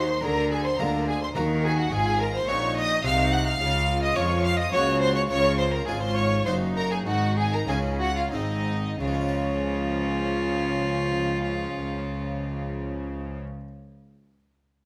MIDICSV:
0, 0, Header, 1, 8, 480
1, 0, Start_track
1, 0, Key_signature, -5, "major"
1, 0, Tempo, 562852
1, 196, Time_signature, 3, 2, 24, 8
1, 4516, Tempo, 588235
1, 5956, Tempo, 632244
1, 6916, Tempo, 682594
1, 11505, End_track
2, 0, Start_track
2, 0, Title_t, "Violin section"
2, 0, Program_c, 0, 48
2, 0, Note_on_c, 0, 84, 107
2, 189, Note_on_c, 0, 82, 110
2, 194, Note_off_c, 0, 84, 0
2, 429, Note_on_c, 0, 80, 109
2, 433, Note_off_c, 0, 82, 0
2, 549, Note_on_c, 0, 84, 109
2, 551, Note_off_c, 0, 80, 0
2, 670, Note_on_c, 0, 82, 106
2, 674, Note_off_c, 0, 84, 0
2, 912, Note_on_c, 0, 80, 117
2, 914, Note_off_c, 0, 82, 0
2, 1033, Note_off_c, 0, 80, 0
2, 1039, Note_on_c, 0, 84, 107
2, 1087, Note_off_c, 0, 84, 0
2, 1153, Note_on_c, 0, 82, 96
2, 1222, Note_off_c, 0, 82, 0
2, 1396, Note_on_c, 0, 80, 110
2, 1514, Note_off_c, 0, 80, 0
2, 1520, Note_on_c, 0, 78, 115
2, 1638, Note_off_c, 0, 78, 0
2, 1639, Note_on_c, 0, 80, 127
2, 1875, Note_on_c, 0, 82, 120
2, 1877, Note_off_c, 0, 80, 0
2, 1995, Note_off_c, 0, 82, 0
2, 1998, Note_on_c, 0, 84, 119
2, 2113, Note_on_c, 0, 85, 121
2, 2117, Note_off_c, 0, 84, 0
2, 2349, Note_off_c, 0, 85, 0
2, 2363, Note_on_c, 0, 87, 127
2, 2594, Note_off_c, 0, 87, 0
2, 2605, Note_on_c, 0, 89, 120
2, 2673, Note_off_c, 0, 89, 0
2, 2835, Note_on_c, 0, 90, 114
2, 2952, Note_off_c, 0, 90, 0
2, 2958, Note_on_c, 0, 89, 127
2, 3435, Note_off_c, 0, 89, 0
2, 3441, Note_on_c, 0, 87, 112
2, 3550, Note_on_c, 0, 85, 113
2, 3554, Note_off_c, 0, 87, 0
2, 3791, Note_on_c, 0, 89, 126
2, 3792, Note_off_c, 0, 85, 0
2, 3912, Note_off_c, 0, 89, 0
2, 3914, Note_on_c, 0, 87, 119
2, 4031, Note_off_c, 0, 87, 0
2, 4034, Note_on_c, 0, 85, 114
2, 4102, Note_off_c, 0, 85, 0
2, 4279, Note_on_c, 0, 84, 115
2, 4395, Note_off_c, 0, 84, 0
2, 4399, Note_on_c, 0, 85, 124
2, 4447, Note_off_c, 0, 85, 0
2, 4511, Note_on_c, 0, 85, 117
2, 4743, Note_off_c, 0, 85, 0
2, 4749, Note_on_c, 0, 84, 107
2, 4797, Note_off_c, 0, 84, 0
2, 4868, Note_on_c, 0, 82, 112
2, 4983, Note_on_c, 0, 80, 112
2, 4984, Note_off_c, 0, 82, 0
2, 5101, Note_off_c, 0, 80, 0
2, 5110, Note_on_c, 0, 84, 115
2, 5223, Note_on_c, 0, 85, 117
2, 5224, Note_off_c, 0, 84, 0
2, 5457, Note_on_c, 0, 84, 105
2, 5464, Note_off_c, 0, 85, 0
2, 5522, Note_off_c, 0, 84, 0
2, 5708, Note_on_c, 0, 82, 118
2, 5829, Note_off_c, 0, 82, 0
2, 5835, Note_on_c, 0, 80, 105
2, 5884, Note_off_c, 0, 80, 0
2, 5957, Note_on_c, 0, 78, 118
2, 6185, Note_off_c, 0, 78, 0
2, 6193, Note_on_c, 0, 80, 115
2, 6307, Note_off_c, 0, 80, 0
2, 6321, Note_on_c, 0, 82, 114
2, 6433, Note_off_c, 0, 82, 0
2, 6437, Note_on_c, 0, 80, 110
2, 6498, Note_off_c, 0, 80, 0
2, 6685, Note_on_c, 0, 78, 116
2, 6797, Note_off_c, 0, 78, 0
2, 6802, Note_on_c, 0, 77, 99
2, 6921, Note_off_c, 0, 77, 0
2, 6927, Note_on_c, 0, 75, 101
2, 7395, Note_on_c, 0, 73, 97
2, 7396, Note_off_c, 0, 75, 0
2, 10484, Note_off_c, 0, 73, 0
2, 11505, End_track
3, 0, Start_track
3, 0, Title_t, "Violin"
3, 0, Program_c, 1, 40
3, 0, Note_on_c, 1, 72, 102
3, 187, Note_off_c, 1, 72, 0
3, 193, Note_on_c, 1, 70, 110
3, 438, Note_on_c, 1, 68, 98
3, 451, Note_off_c, 1, 70, 0
3, 547, Note_off_c, 1, 68, 0
3, 553, Note_on_c, 1, 72, 92
3, 676, Note_on_c, 1, 70, 90
3, 688, Note_off_c, 1, 72, 0
3, 920, Note_on_c, 1, 68, 107
3, 933, Note_off_c, 1, 70, 0
3, 1039, Note_off_c, 1, 68, 0
3, 1044, Note_on_c, 1, 72, 83
3, 1157, Note_on_c, 1, 70, 93
3, 1170, Note_off_c, 1, 72, 0
3, 1404, Note_on_c, 1, 68, 104
3, 1417, Note_off_c, 1, 70, 0
3, 1518, Note_off_c, 1, 68, 0
3, 1524, Note_on_c, 1, 66, 89
3, 1634, Note_on_c, 1, 68, 108
3, 1647, Note_off_c, 1, 66, 0
3, 1875, Note_on_c, 1, 70, 105
3, 1887, Note_off_c, 1, 68, 0
3, 1991, Note_off_c, 1, 70, 0
3, 1996, Note_on_c, 1, 72, 99
3, 2120, Note_on_c, 1, 73, 99
3, 2133, Note_off_c, 1, 72, 0
3, 2349, Note_off_c, 1, 73, 0
3, 2354, Note_on_c, 1, 75, 123
3, 2587, Note_off_c, 1, 75, 0
3, 2592, Note_on_c, 1, 77, 113
3, 2833, Note_on_c, 1, 78, 112
3, 2846, Note_off_c, 1, 77, 0
3, 2952, Note_off_c, 1, 78, 0
3, 2957, Note_on_c, 1, 77, 113
3, 3425, Note_off_c, 1, 77, 0
3, 3432, Note_on_c, 1, 75, 113
3, 3548, Note_on_c, 1, 73, 100
3, 3561, Note_off_c, 1, 75, 0
3, 3775, Note_off_c, 1, 73, 0
3, 3780, Note_on_c, 1, 77, 116
3, 3896, Note_on_c, 1, 75, 100
3, 3909, Note_off_c, 1, 77, 0
3, 4016, Note_off_c, 1, 75, 0
3, 4021, Note_on_c, 1, 73, 120
3, 4263, Note_off_c, 1, 73, 0
3, 4271, Note_on_c, 1, 72, 100
3, 4375, Note_off_c, 1, 72, 0
3, 4380, Note_on_c, 1, 73, 94
3, 4502, Note_off_c, 1, 73, 0
3, 4507, Note_on_c, 1, 73, 121
3, 4737, Note_off_c, 1, 73, 0
3, 4742, Note_on_c, 1, 72, 110
3, 4858, Note_on_c, 1, 70, 98
3, 4870, Note_off_c, 1, 72, 0
3, 4976, Note_on_c, 1, 68, 97
3, 4988, Note_off_c, 1, 70, 0
3, 5093, Note_on_c, 1, 72, 96
3, 5106, Note_off_c, 1, 68, 0
3, 5207, Note_off_c, 1, 72, 0
3, 5212, Note_on_c, 1, 73, 105
3, 5454, Note_off_c, 1, 73, 0
3, 5463, Note_on_c, 1, 72, 110
3, 5528, Note_off_c, 1, 72, 0
3, 5708, Note_on_c, 1, 70, 92
3, 5840, Note_on_c, 1, 68, 82
3, 5852, Note_off_c, 1, 70, 0
3, 5951, Note_off_c, 1, 68, 0
3, 5956, Note_on_c, 1, 66, 98
3, 6190, Note_on_c, 1, 68, 102
3, 6202, Note_off_c, 1, 66, 0
3, 6304, Note_off_c, 1, 68, 0
3, 6309, Note_on_c, 1, 70, 92
3, 6356, Note_off_c, 1, 70, 0
3, 6426, Note_on_c, 1, 68, 96
3, 6487, Note_off_c, 1, 68, 0
3, 6664, Note_on_c, 1, 66, 104
3, 6780, Note_off_c, 1, 66, 0
3, 6784, Note_on_c, 1, 65, 80
3, 6902, Note_off_c, 1, 65, 0
3, 6906, Note_on_c, 1, 63, 92
3, 7376, Note_off_c, 1, 63, 0
3, 7394, Note_on_c, 1, 65, 105
3, 10482, Note_off_c, 1, 65, 0
3, 11505, End_track
4, 0, Start_track
4, 0, Title_t, "Violin section"
4, 0, Program_c, 2, 48
4, 0, Note_on_c, 2, 72, 97
4, 191, Note_off_c, 2, 72, 0
4, 191, Note_on_c, 2, 70, 98
4, 435, Note_off_c, 2, 70, 0
4, 439, Note_on_c, 2, 68, 87
4, 556, Note_off_c, 2, 68, 0
4, 557, Note_on_c, 2, 72, 94
4, 675, Note_on_c, 2, 70, 84
4, 678, Note_off_c, 2, 72, 0
4, 912, Note_off_c, 2, 70, 0
4, 924, Note_on_c, 2, 68, 81
4, 1039, Note_off_c, 2, 68, 0
4, 1040, Note_on_c, 2, 72, 90
4, 1148, Note_on_c, 2, 70, 90
4, 1157, Note_off_c, 2, 72, 0
4, 1388, Note_off_c, 2, 70, 0
4, 1393, Note_on_c, 2, 68, 106
4, 1515, Note_off_c, 2, 68, 0
4, 1518, Note_on_c, 2, 66, 101
4, 1638, Note_off_c, 2, 66, 0
4, 1639, Note_on_c, 2, 68, 107
4, 1877, Note_off_c, 2, 68, 0
4, 1880, Note_on_c, 2, 70, 94
4, 1987, Note_on_c, 2, 72, 100
4, 1996, Note_off_c, 2, 70, 0
4, 2109, Note_off_c, 2, 72, 0
4, 2117, Note_on_c, 2, 73, 103
4, 2356, Note_off_c, 2, 73, 0
4, 2366, Note_on_c, 2, 75, 103
4, 2600, Note_off_c, 2, 75, 0
4, 2607, Note_on_c, 2, 77, 115
4, 2836, Note_off_c, 2, 77, 0
4, 2841, Note_on_c, 2, 78, 111
4, 2888, Note_off_c, 2, 78, 0
4, 2961, Note_on_c, 2, 77, 119
4, 3427, Note_off_c, 2, 77, 0
4, 3433, Note_on_c, 2, 75, 95
4, 3546, Note_on_c, 2, 73, 100
4, 3550, Note_off_c, 2, 75, 0
4, 3790, Note_off_c, 2, 73, 0
4, 3793, Note_on_c, 2, 77, 91
4, 3913, Note_off_c, 2, 77, 0
4, 3923, Note_on_c, 2, 75, 109
4, 3969, Note_off_c, 2, 75, 0
4, 4027, Note_on_c, 2, 73, 101
4, 4095, Note_off_c, 2, 73, 0
4, 4278, Note_on_c, 2, 72, 113
4, 4390, Note_on_c, 2, 73, 105
4, 4395, Note_off_c, 2, 72, 0
4, 4440, Note_off_c, 2, 73, 0
4, 4511, Note_on_c, 2, 73, 111
4, 4743, Note_off_c, 2, 73, 0
4, 4751, Note_on_c, 2, 72, 103
4, 4866, Note_off_c, 2, 72, 0
4, 4882, Note_on_c, 2, 70, 92
4, 4991, Note_on_c, 2, 68, 102
4, 4993, Note_off_c, 2, 70, 0
4, 5038, Note_off_c, 2, 68, 0
4, 5111, Note_on_c, 2, 72, 89
4, 5225, Note_off_c, 2, 72, 0
4, 5236, Note_on_c, 2, 73, 96
4, 5471, Note_off_c, 2, 73, 0
4, 5485, Note_on_c, 2, 72, 101
4, 5550, Note_off_c, 2, 72, 0
4, 5719, Note_on_c, 2, 70, 100
4, 5835, Note_off_c, 2, 70, 0
4, 5841, Note_on_c, 2, 68, 99
4, 5960, Note_off_c, 2, 68, 0
4, 5973, Note_on_c, 2, 66, 106
4, 6193, Note_off_c, 2, 66, 0
4, 6198, Note_on_c, 2, 68, 87
4, 6309, Note_off_c, 2, 68, 0
4, 6315, Note_on_c, 2, 70, 86
4, 6430, Note_off_c, 2, 70, 0
4, 6430, Note_on_c, 2, 68, 84
4, 6665, Note_off_c, 2, 68, 0
4, 6674, Note_on_c, 2, 66, 79
4, 6722, Note_off_c, 2, 66, 0
4, 6792, Note_on_c, 2, 65, 85
4, 6912, Note_on_c, 2, 63, 87
4, 6914, Note_off_c, 2, 65, 0
4, 7389, Note_off_c, 2, 63, 0
4, 7392, Note_on_c, 2, 61, 97
4, 10480, Note_off_c, 2, 61, 0
4, 11505, End_track
5, 0, Start_track
5, 0, Title_t, "Viola section"
5, 0, Program_c, 3, 48
5, 196, Note_on_c, 3, 68, 77
5, 264, Note_off_c, 3, 68, 0
5, 432, Note_on_c, 3, 68, 64
5, 500, Note_off_c, 3, 68, 0
5, 671, Note_on_c, 3, 68, 81
5, 740, Note_off_c, 3, 68, 0
5, 912, Note_on_c, 3, 68, 73
5, 980, Note_off_c, 3, 68, 0
5, 1149, Note_on_c, 3, 66, 79
5, 1217, Note_off_c, 3, 66, 0
5, 1395, Note_on_c, 3, 66, 84
5, 1464, Note_off_c, 3, 66, 0
5, 1639, Note_on_c, 3, 65, 80
5, 2083, Note_off_c, 3, 65, 0
5, 2115, Note_on_c, 3, 63, 79
5, 2586, Note_off_c, 3, 63, 0
5, 2596, Note_on_c, 3, 63, 91
5, 3066, Note_off_c, 3, 63, 0
5, 3076, Note_on_c, 3, 65, 90
5, 4015, Note_off_c, 3, 65, 0
5, 4030, Note_on_c, 3, 66, 91
5, 4514, Note_on_c, 3, 65, 83
5, 4515, Note_off_c, 3, 66, 0
5, 4976, Note_off_c, 3, 65, 0
5, 4988, Note_on_c, 3, 65, 86
5, 5456, Note_off_c, 3, 65, 0
5, 5466, Note_on_c, 3, 63, 89
5, 5949, Note_off_c, 3, 63, 0
5, 5959, Note_on_c, 3, 63, 80
5, 6418, Note_off_c, 3, 63, 0
5, 6435, Note_on_c, 3, 61, 78
5, 6919, Note_off_c, 3, 61, 0
5, 6920, Note_on_c, 3, 60, 75
5, 7223, Note_off_c, 3, 60, 0
5, 7396, Note_on_c, 3, 53, 77
5, 10485, Note_off_c, 3, 53, 0
5, 11505, End_track
6, 0, Start_track
6, 0, Title_t, "Harpsichord"
6, 0, Program_c, 4, 6
6, 0, Note_on_c, 4, 51, 72
6, 114, Note_off_c, 4, 51, 0
6, 190, Note_on_c, 4, 50, 72
6, 593, Note_off_c, 4, 50, 0
6, 676, Note_on_c, 4, 50, 82
6, 679, Note_on_c, 4, 56, 62
6, 682, Note_on_c, 4, 58, 64
6, 684, Note_on_c, 4, 65, 67
6, 1025, Note_off_c, 4, 56, 0
6, 1027, Note_off_c, 4, 58, 0
6, 1028, Note_off_c, 4, 65, 0
6, 1075, Note_off_c, 4, 50, 0
6, 1155, Note_on_c, 4, 51, 73
6, 1160, Note_on_c, 4, 58, 56
6, 1163, Note_on_c, 4, 66, 58
6, 1554, Note_off_c, 4, 51, 0
6, 1604, Note_off_c, 4, 58, 0
6, 1605, Note_off_c, 4, 66, 0
6, 1638, Note_on_c, 4, 44, 76
6, 2082, Note_off_c, 4, 44, 0
6, 2118, Note_on_c, 4, 56, 68
6, 2121, Note_on_c, 4, 46, 79
6, 2124, Note_on_c, 4, 60, 60
6, 2127, Note_on_c, 4, 66, 69
6, 2462, Note_off_c, 4, 56, 0
6, 2466, Note_off_c, 4, 60, 0
6, 2468, Note_off_c, 4, 66, 0
6, 2563, Note_off_c, 4, 46, 0
6, 2592, Note_on_c, 4, 48, 73
6, 2593, Note_on_c, 4, 56, 66
6, 2594, Note_on_c, 4, 60, 59
6, 2598, Note_on_c, 4, 66, 64
6, 2939, Note_off_c, 4, 56, 0
6, 2940, Note_off_c, 4, 60, 0
6, 2943, Note_off_c, 4, 66, 0
6, 3039, Note_off_c, 4, 48, 0
6, 3071, Note_on_c, 4, 49, 79
6, 3517, Note_off_c, 4, 49, 0
6, 3545, Note_on_c, 4, 53, 83
6, 3546, Note_on_c, 4, 56, 64
6, 3551, Note_on_c, 4, 61, 71
6, 3554, Note_on_c, 4, 65, 70
6, 3894, Note_off_c, 4, 56, 0
6, 3897, Note_off_c, 4, 61, 0
6, 3899, Note_off_c, 4, 65, 0
6, 3995, Note_off_c, 4, 53, 0
6, 4037, Note_on_c, 4, 49, 73
6, 4037, Note_on_c, 4, 58, 56
6, 4043, Note_on_c, 4, 61, 54
6, 4049, Note_on_c, 4, 66, 56
6, 4484, Note_off_c, 4, 58, 0
6, 4485, Note_off_c, 4, 49, 0
6, 4488, Note_off_c, 4, 61, 0
6, 4491, Note_off_c, 4, 66, 0
6, 4525, Note_on_c, 4, 49, 73
6, 4958, Note_off_c, 4, 49, 0
6, 4992, Note_on_c, 4, 44, 78
6, 4993, Note_on_c, 4, 56, 68
6, 4996, Note_on_c, 4, 61, 63
6, 5000, Note_on_c, 4, 65, 67
6, 5335, Note_off_c, 4, 56, 0
6, 5337, Note_off_c, 4, 61, 0
6, 5340, Note_off_c, 4, 65, 0
6, 5435, Note_off_c, 4, 44, 0
6, 5471, Note_on_c, 4, 42, 70
6, 5472, Note_on_c, 4, 58, 53
6, 5476, Note_on_c, 4, 63, 55
6, 5482, Note_on_c, 4, 66, 60
6, 5926, Note_off_c, 4, 42, 0
6, 5927, Note_off_c, 4, 58, 0
6, 5929, Note_off_c, 4, 63, 0
6, 5932, Note_off_c, 4, 66, 0
6, 5962, Note_on_c, 4, 44, 76
6, 6399, Note_off_c, 4, 44, 0
6, 6430, Note_on_c, 4, 49, 72
6, 6434, Note_on_c, 4, 56, 68
6, 6435, Note_on_c, 4, 61, 60
6, 6439, Note_on_c, 4, 63, 69
6, 6783, Note_off_c, 4, 56, 0
6, 6784, Note_off_c, 4, 61, 0
6, 6786, Note_off_c, 4, 63, 0
6, 6887, Note_off_c, 4, 49, 0
6, 6915, Note_on_c, 4, 44, 71
6, 6922, Note_on_c, 4, 60, 52
6, 6927, Note_on_c, 4, 63, 55
6, 7362, Note_off_c, 4, 44, 0
6, 7365, Note_off_c, 4, 60, 0
6, 7368, Note_off_c, 4, 63, 0
6, 7395, Note_on_c, 4, 49, 70
6, 7444, Note_on_c, 4, 56, 77
6, 7493, Note_on_c, 4, 61, 73
6, 7539, Note_on_c, 4, 65, 72
6, 7591, Note_on_c, 4, 73, 66
6, 10483, Note_off_c, 4, 49, 0
6, 10532, Note_off_c, 4, 56, 0
6, 10581, Note_off_c, 4, 61, 0
6, 10628, Note_off_c, 4, 65, 0
6, 10680, Note_off_c, 4, 73, 0
6, 11505, End_track
7, 0, Start_track
7, 0, Title_t, "Cello section"
7, 0, Program_c, 5, 48
7, 0, Note_on_c, 5, 51, 91
7, 136, Note_off_c, 5, 51, 0
7, 191, Note_on_c, 5, 50, 104
7, 619, Note_off_c, 5, 50, 0
7, 672, Note_on_c, 5, 50, 98
7, 1099, Note_off_c, 5, 50, 0
7, 1151, Note_on_c, 5, 51, 100
7, 1577, Note_off_c, 5, 51, 0
7, 1634, Note_on_c, 5, 44, 104
7, 2080, Note_off_c, 5, 44, 0
7, 2113, Note_on_c, 5, 46, 89
7, 2593, Note_on_c, 5, 48, 105
7, 2594, Note_off_c, 5, 46, 0
7, 3064, Note_off_c, 5, 48, 0
7, 3075, Note_on_c, 5, 49, 98
7, 3544, Note_off_c, 5, 49, 0
7, 3553, Note_on_c, 5, 53, 96
7, 4023, Note_off_c, 5, 53, 0
7, 4042, Note_on_c, 5, 49, 93
7, 4511, Note_off_c, 5, 49, 0
7, 4527, Note_on_c, 5, 49, 96
7, 4982, Note_off_c, 5, 49, 0
7, 4988, Note_on_c, 5, 44, 93
7, 5456, Note_off_c, 5, 44, 0
7, 5460, Note_on_c, 5, 42, 91
7, 5944, Note_off_c, 5, 42, 0
7, 5956, Note_on_c, 5, 44, 96
7, 6417, Note_off_c, 5, 44, 0
7, 6425, Note_on_c, 5, 49, 87
7, 6905, Note_off_c, 5, 49, 0
7, 6917, Note_on_c, 5, 44, 90
7, 7381, Note_off_c, 5, 44, 0
7, 7388, Note_on_c, 5, 49, 97
7, 10477, Note_off_c, 5, 49, 0
7, 11505, End_track
8, 0, Start_track
8, 0, Title_t, "Double bass section"
8, 0, Program_c, 6, 48
8, 0, Note_on_c, 6, 39, 87
8, 137, Note_off_c, 6, 39, 0
8, 193, Note_on_c, 6, 38, 87
8, 620, Note_off_c, 6, 38, 0
8, 681, Note_on_c, 6, 38, 96
8, 1104, Note_off_c, 6, 38, 0
8, 1164, Note_on_c, 6, 39, 92
8, 1583, Note_off_c, 6, 39, 0
8, 1643, Note_on_c, 6, 32, 87
8, 2086, Note_off_c, 6, 32, 0
8, 2118, Note_on_c, 6, 34, 93
8, 2596, Note_off_c, 6, 34, 0
8, 2598, Note_on_c, 6, 36, 98
8, 3067, Note_off_c, 6, 36, 0
8, 3075, Note_on_c, 6, 37, 99
8, 3544, Note_off_c, 6, 37, 0
8, 3555, Note_on_c, 6, 41, 91
8, 4025, Note_off_c, 6, 41, 0
8, 4037, Note_on_c, 6, 37, 99
8, 4509, Note_off_c, 6, 37, 0
8, 4520, Note_on_c, 6, 37, 99
8, 4978, Note_off_c, 6, 37, 0
8, 4989, Note_on_c, 6, 32, 94
8, 5457, Note_off_c, 6, 32, 0
8, 5467, Note_on_c, 6, 30, 93
8, 5947, Note_off_c, 6, 30, 0
8, 5956, Note_on_c, 6, 32, 92
8, 6417, Note_off_c, 6, 32, 0
8, 6427, Note_on_c, 6, 37, 88
8, 6906, Note_off_c, 6, 37, 0
8, 6919, Note_on_c, 6, 32, 89
8, 7382, Note_off_c, 6, 32, 0
8, 7394, Note_on_c, 6, 37, 86
8, 10482, Note_off_c, 6, 37, 0
8, 11505, End_track
0, 0, End_of_file